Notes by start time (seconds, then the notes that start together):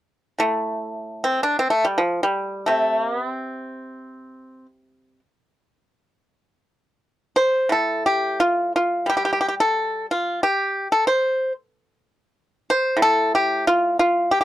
0.38 A2 A3
1.24 C4
1.43 D4
1.59 C4
1.70 A3
1.85 G3
1.98 F3
2.23 G3
2.66 C3 A3
2.97 A#3
3.13 B3
3.28 C4
7.36 C5
7.69 A2 A4
8.06 G4
8.40 F4
8.76 F4
9.06 G3 G4
9.17 G4
9.25 G4
9.33 G4
9.41 G4
9.48 G4
9.60 A4
10.11 F4
10.43 G4
10.92 A4
11.07 C5
12.70 C5
12.97 A2
13.02 A4
13.35 G4
13.67 F4
13.99 F4
14.31 G4
14.41 G4